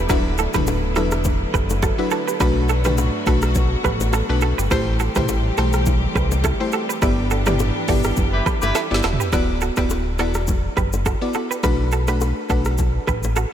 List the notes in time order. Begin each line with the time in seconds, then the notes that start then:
Already playing: D3 B3 E4
0.09 D1 F#3 A3 D4 E4 F#4 B4, kick, cross-stick, low conga, shaker
0.38 F#4 A4, low bongo, shaker
0.54 D1 F#3 D4 E4 G4 B4, kick, cross-stick, mid tom, low bongo, shaker
0.67 high bongo, shaker
0.96 E1 F#3 D4 E4 F#4 A4 B4, cross-stick, shaker
1.11 cross-stick, shaker
1.24 kick, low bongo, low conga, shaker
1.54 F#1 G4 B4, kick, cross-stick, low conga, shaker
1.70 high bongo, low bongo, shaker
1.82 F#4 A4, kick, cross-stick, high bongo, shaker
1.98 F#3 D4 E4 B4
2.11 F#4 A4, shaker
2.28 G4 B4, shaker
2.40 B1 A3 D4 F#4 B4, kick, cross-stick, low conga, shaker
2.69 F#4 A4, low bongo, shaker
2.85 A3 D4 F#4 G4 B4, cross-stick, mid tom, low bongo, shaker
2.98 high bongo, shaker
3.26 B1 A3 D4 F#4 A4 B4, kick, shaker
3.42 cross-stick, shaker
3.55 kick, low bongo, low conga, shaker
3.84 A1 G4 B4, kick, cross-stick, low conga, shaker
4.00 high bongo, low bongo, shaker
4.13 F#4 A4, cross-stick, high bongo, shaker
4.29 B1 A3 D4 F#4 B4
4.41 F#4 A4, shaker
4.58 G1 G4 B4, shaker
4.71 A1 E3 G3 A3 C4 E4 G4 B4 C5, kick, cross-stick, low conga, shaker
5.00 F#4 A4, low bongo, shaker
5.15 A1 A3 E4 G4 B4 C5, kick, cross-stick, mid tom, low bongo, shaker
5.28 high bongo, shaker
5.57 B1 A3 E4 F#4 G4 A4 C5, cross-stick, shaker
5.73 cross-stick, shaker
5.86 kick, low bongo, low conga, shaker
6.15 C2 G4 B4, kick, cross-stick, low conga, shaker
6.32 high bongo, low bongo, shaker
6.44 E4 A4, kick, cross-stick, high bongo, shaker
6.60 A3 E4 G4 C5
6.72 F#4 A4, shaker
6.89 G4 B4, shaker
7.02 G1 E3 B3 D4 E4 G4 B4 D5, kick, cross-stick, low conga, shaker
7.31 F#4 A4, low bongo, shaker
7.46 B3 E4 G4 B4 D5, cross-stick, mid tom, low bongo, shaker
7.59 high bongo, shaker
7.88 G1 B3 E4 F#4 G4 A4 D5, kick, mid tom, open hi-hat, shaker
8.04 cross-stick, shaker
8.17 F#1, kick, low bongo, low conga, shaker
8.33 E4 G4 B4
8.46 G4 B4, kick, cross-stick, low conga, shaker
8.62 G1 E4 G4 B4, high bongo, low bongo, shaker
8.75 E4 A4, snare, high bongo, shaker
8.91 G1 B3 E4 G4 D5, snare
9.03 E1 F#4 A4, snare, high bongo, shaker
9.13 floor tom
9.20 G4 B4, shaker
9.33 D1 B3 E4 F#4 B4 D5, kick, cross-stick, low conga, shaker
9.61 F#4 A4, shaker
9.77 D1 B3 E4 F#4 G4 B4 D5, kick, cross-stick, shaker
9.90 high bongo, shaker
10.19 E1 B3 E4 F#4 A4 D5, cross-stick, shaker
10.34 cross-stick, shaker
10.47 kick, low bongo, low conga, shaker
10.77 F#1 G4 B4, kick, cross-stick, low conga, shaker
10.93 high bongo, low bongo, shaker
11.06 F#4 A4, kick, cross-stick, high bongo, shaker
11.21 B3 E4 F#4 D5
11.34 F#4 A4, high bongo, shaker
11.51 G4 B4, shaker
11.63 B1 A3 D4 F#4 B4, kick, cross-stick, low conga, shaker
11.92 F#4 A4, shaker
12.08 A3 D4 F#4 G4 B4, cross-stick, shaker
12.21 high bongo, shaker
12.49 B1 A3 D4 F#4 A4 B4, kick, shaker
12.65 cross-stick, shaker
12.78 kick, low bongo, low conga, shaker
13.07 A1 G4 B4, kick, cross-stick, low conga, shaker
13.23 high bongo, low bongo, shaker
13.36 F#4 A4, cross-stick, high bongo, shaker